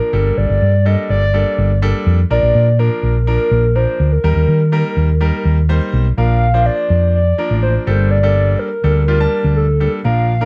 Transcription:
Already playing: grand piano F3 A#3 D4 A#4, soft synth lead A#4
0.13 fingered electric bass G1, grand piano G3 A#3 D4 A4
0.37 fingered electric bass G1, soft synth lead D5
0.50 fingered electric bass G1
0.62 fingered electric bass G2
0.85 grand piano G3 A#3 D4 A4, soft synth lead D#5
1.10 fingered electric bass G1, soft synth lead D5
1.34 grand piano G3 A#3 D4 A4
1.58 fingered electric bass G1
1.82 grand piano G3 A#3 D4 A4
2.06 fingered electric bass F2
2.30 fingered electric bass A#1, grand piano F3 A#3 D4 A#4, soft synth lead D5
2.43 fingered electric bass A#1
2.55 fingered electric bass A#2
2.79 grand piano F3 A#3 D4 A#4, soft synth lead A#4
3.03 fingered electric bass A#1
3.27 grand piano F3 A#3 D4 A#4, soft synth lead A#4
3.51 fingered electric bass A#1
3.75 grand piano F3 A#3 D4 A#4, soft synth lead C5
4.00 fingered electric bass D2
4.12 soft synth lead A#4
4.24 fingered electric bass D#2, grand piano G3 A#3 D#4 A#4
4.36 fingered electric bass D#2
4.48 fingered electric bass D#3
4.72 grand piano G3 A#3 D#4 A#4
4.97 fingered electric bass D#2
5.21 grand piano G3 A#3 D#4 A#4
5.45 fingered electric bass D#2
5.69 grand piano G3 A#3 D#4 C5
5.93 fingered electric bass B1
6.17 fingered electric bass A#1, grand piano F3 A#3 D4 A#4, soft synth lead F5
6.54 grand piano F3 A#3 D4 C5
6.66 soft synth lead D5
6.90 fingered electric bass F2
7.14 soft synth lead D5
7.38 grand piano F3 A#3 D4 A#4
7.51 fingered electric bass A1
7.62 soft synth lead C5
7.87 fingered electric bass G1, grand piano G3 A#3 D4 A4, soft synth lead C5
8.11 soft synth lead D5
8.23 grand piano G3 A#3 D4 A4
8.59 soft synth lead A#4
8.84 fingered electric bass D2, grand piano G3 A#3 D4 A4
9.08 grand piano G3 A#3 D4 F4, soft synth lead A#4
9.20 grand piano G3 A#3 D4 A5
9.44 fingered electric bass D2
9.56 soft synth lead A4
9.80 grand piano G3 A#3 D4 A4, soft synth lead A4
10.04 fingered electric bass A#1, grand piano F3 A#3 D4 A#4, soft synth lead F5
10.41 grand piano F3 A#3 D4 A#4

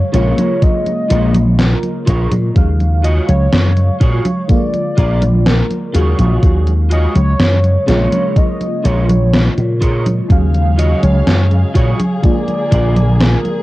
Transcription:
Already playing: fm electric piano C#3 F#3 G#3 F5
0.12 slap bass A#1, fm electric piano C#3 G#3 A#3 F4, clean electric guitar F4 G#4 A#4 C#5, soft synth lead C#5, closed hi-hat
0.38 closed hi-hat, high conga
0.62 soft synth lead D#5, kick, closed hi-hat, high conga
0.86 closed hi-hat, high conga
1.10 slap bass A#1, clean electric guitar F4 G#4 A#4 C#5, closed hi-hat
1.35 closed hi-hat, high conga
1.59 soft synth lead A#4, snare, closed hi-hat, high conga
1.83 closed hi-hat, high conga
2.06 slap bass A#1, clean electric guitar F4 G#4 A#4 C#5, kick, closed hi-hat
2.32 slap bass A#2, closed hi-hat, high conga
2.54 slap bass D#2, fm electric piano C#3 F#3 G#3 F5, kick, closed hi-hat, high conga
2.80 closed hi-hat, high conga
3.03 clean electric guitar F4 F#4 G#4 C#5, soft synth lead D#5, closed hi-hat
3.28 slap bass C#2, soft synth lead C#5, closed hi-hat, high conga
3.53 slap bass F#2, snare, closed hi-hat, high conga
3.77 closed hi-hat, high conga
4.00 slap bass A#2, clean electric guitar F4 F#4 G#4 C#5, soft synth lead C#5, kick, closed hi-hat
4.25 closed hi-hat, high conga
4.48 fm electric piano D3 G#3 A#3 F4, soft synth lead D5, kick, closed hi-hat, high conga
4.74 closed hi-hat, high conga
4.97 slap bass A#1, clean electric guitar F4 G#4 A#4 D5, kick, closed hi-hat
5.22 closed hi-hat, high conga
5.46 soft synth lead A#4, snare, closed hi-hat, high conga
5.70 closed hi-hat, high conga
5.93 slap bass D#2, fm electric piano C#3 F#3 G#3 F5, clean electric guitar F4 F#4 G#4 C#5, closed hi-hat
6.19 slap bass A#1, closed hi-hat, high conga
6.43 slap bass D#2, kick, closed hi-hat, high conga
6.67 closed hi-hat, high conga
6.90 clean electric guitar F4 F#4 G#4 C#5, soft synth lead D#5, closed hi-hat
7.16 slap bass C#2, soft synth lead C#5, closed hi-hat, high conga
7.40 slap bass F#2, snare, closed hi-hat, high conga
7.64 closed hi-hat, high conga
7.86 slap bass A#1, fm electric piano C#3 G#3 A#3 F4, clean electric guitar F4 G#4 A#4 C#5, soft synth lead C#5, snare, closed hi-hat
8.12 closed hi-hat, high conga
8.36 soft synth lead D#5, kick, closed hi-hat, high conga
8.61 closed hi-hat, high conga
8.84 slap bass A#1, clean electric guitar F4 G#4 A#4 C#5, soft synth lead C#5, closed hi-hat
9.09 closed hi-hat, high conga
9.34 snare, closed hi-hat, high conga
9.58 slap bass A#2, closed hi-hat, high conga
9.81 clean electric guitar F4 G#4 A#4 C#5, kick, closed hi-hat
10.06 closed hi-hat, high conga
10.29 slap bass D#2, fm electric piano C#3 F#3 G#3 F5, string section C#3 F#3 G#4 F5, kick, closed hi-hat, high conga
10.54 closed hi-hat, high conga
10.77 clean electric guitar F4 F#4 G#4 C#5, soft synth lead D#5, closed hi-hat
11.03 slap bass C#2, soft synth lead C#5, closed hi-hat, high conga
11.27 slap bass F#2, snare, closed hi-hat, high conga
11.51 closed hi-hat, high conga
11.74 slap bass A#2, clean electric guitar F4 F#4 G#4 C#5, soft synth lead C#5, kick, closed hi-hat
12.00 closed hi-hat, high conga
12.22 fm electric piano D3 G#3 A#3 F4, string section D3 A#3, soft synth lead D5, kick, closed hi-hat, high conga
12.48 closed hi-hat, high conga
12.71 slap bass A#1, clean electric guitar F4 G#4 A#4 D5, kick, closed hi-hat
12.96 closed hi-hat, high conga
13.21 soft synth lead A#4, snare, closed hi-hat, high conga
13.45 closed hi-hat, high conga

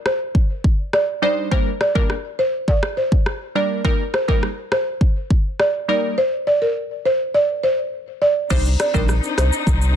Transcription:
0.06 marimba C5, cross-stick
0.35 kick
0.64 kick
0.93 marimba D5, cross-stick
1.22 synth stab G3 D4 D#4 C5, marimba D5
1.51 synth stab G3 A#3 D4 A#4, marimba C5, kick
1.81 marimba D5, cross-stick
1.95 synth stab G3 A#3 D4 A#4, marimba A#4, kick
2.10 cross-stick
2.39 marimba C5
2.68 marimba D5, kick
2.83 cross-stick
2.97 marimba C5
3.12 kick
3.26 cross-stick
3.55 synth stab G3 A#3 D4 A#4, marimba D5
3.84 synth stab G3 A#3 D#4 A#4, marimba A#4, kick
4.14 marimba C5, cross-stick
4.28 synth stab G3 A#3 D#4 A#4, marimba A#4, kick
4.43 cross-stick
4.72 marimba C5, cross-stick
5.01 kick
5.30 kick
5.60 marimba D5, cross-stick
5.88 synth stab G3 A#3 D#4 A#4, marimba D5
6.18 marimba C5
6.47 marimba D5
6.62 marimba A#4
7.06 marimba C5
7.34 marimba D5
7.63 marimba C5
8.22 marimba D5
8.50 sub bass C2, synth stab G3 D4 D#4 C5, string section C4 D4 D#4, marimba C5, kick, crash, shaker
8.65 shaker
8.80 marimba D5, cross-stick, closed hi-hat, shaker
8.94 sub bass A#1, synth stab G3 D4 D#4 C5, marimba A#4, kick, shaker
9.09 cross-stick, shaker
9.23 shaker
9.38 sub bass C2, marimba C5, cross-stick, closed hi-hat, shaker
9.53 shaker
9.67 sub bass C2, kick, shaker
9.82 shaker

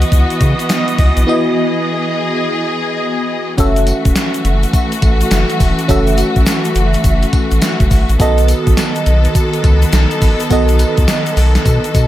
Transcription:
Already playing: string section E3 B3 F#4 D#5, fm electric piano B3 E4 F#4 D#5
0.01 closed hi-hat, shaker
0.12 analog synth bass C#2, kick, closed hi-hat, shaker
0.30 closed hi-hat, shaker
0.41 analog synth bass C#3, kick, closed hi-hat, shaker
0.59 closed hi-hat, shaker
0.69 snare, closed hi-hat, shaker
0.88 closed hi-hat, shaker
0.98 analog synth bass C#2, kick, open hi-hat, shaker
1.17 analog synth bass B1, closed hi-hat, shaker
1.27 fm electric piano B3 E4 F#4 D#5, string section G#4
3.58 analog synth bass F#1, string section E3 A3 F#4, fm electric piano C#4 F#4 A4 E5, kick, closed hi-hat, tambourine, shaker
3.76 closed hi-hat, shaker
3.87 closed hi-hat, tambourine, shaker
4.05 analog synth bass E1, kick, closed hi-hat, shaker
4.16 snare, closed hi-hat, tambourine, shaker
4.34 closed hi-hat, shaker
4.45 analog synth bass F#1, closed hi-hat, shaker
4.63 closed hi-hat, shaker
4.73 kick, closed hi-hat, tambourine, shaker
4.92 closed hi-hat, shaker
5.02 analog synth bass A1, kick, closed hi-hat, tambourine
5.21 closed hi-hat, shaker
5.31 analog synth bass F#1, snare, closed hi-hat, tambourine, shaker
5.49 closed hi-hat, shaker
5.60 analog synth bass E1, kick, open hi-hat, tambourine, shaker
5.78 closed hi-hat, shaker
5.88 analog synth bass F#1, fm electric piano C#4 F#4 A4 E5, kick, closed hi-hat, tambourine, shaker
6.07 closed hi-hat, shaker
6.17 closed hi-hat, tambourine, shaker
6.36 analog synth bass A1, kick, closed hi-hat, shaker
6.46 snare, closed hi-hat, tambourine, shaker
6.65 closed hi-hat, shaker
6.75 analog synth bass F#1, closed hi-hat, shaker
6.93 closed hi-hat, shaker
7.04 analog synth bass F#1, kick, closed hi-hat, tambourine, shaker
7.23 closed hi-hat, shaker
7.33 kick, closed hi-hat, tambourine
7.51 analog synth bass A1, closed hi-hat, shaker
7.62 snare, closed hi-hat, tambourine, shaker
7.80 analog synth bass F#1, kick, closed hi-hat, shaker
7.91 analog synth bass G#1, kick, open hi-hat, tambourine, shaker
8.09 analog synth bass A1, closed hi-hat, shaker
8.19 analog synth bass B1, string section D#3 B3 A4, fm electric piano B3 F#4 A4 D#5, kick, closed hi-hat, tambourine, shaker
8.38 closed hi-hat, shaker
8.48 closed hi-hat, tambourine, shaker
8.67 analog synth bass A1, kick, closed hi-hat, shaker
8.77 snare, closed hi-hat, tambourine, shaker
8.96 closed hi-hat, shaker
9.06 analog synth bass B1, closed hi-hat, shaker
9.24 closed hi-hat, shaker
9.35 kick, closed hi-hat, tambourine, shaker
9.53 closed hi-hat, shaker
9.64 analog synth bass C#2, kick, closed hi-hat, tambourine
9.82 closed hi-hat, shaker
9.92 analog synth bass B1, snare, closed hi-hat, tambourine, shaker
10.11 closed hi-hat, shaker
10.22 analog synth bass A1, kick, open hi-hat, tambourine, shaker
10.40 closed hi-hat, shaker
10.50 analog synth bass B1, fm electric piano B3 F#4 A4 D#5, kick, closed hi-hat, tambourine, shaker
10.68 closed hi-hat, shaker
10.79 closed hi-hat, tambourine, shaker
10.97 analog synth bass C#2, kick, closed hi-hat, shaker
11.08 snare, closed hi-hat, tambourine, shaker
11.26 closed hi-hat, shaker
11.37 analog synth bass B1, open hi-hat, shaker
11.55 snare, closed hi-hat, shaker
11.66 analog synth bass B2, kick, closed hi-hat, tambourine, shaker
11.84 closed hi-hat, shaker
11.95 analog synth bass B2, kick, closed hi-hat, tambourine, shaker

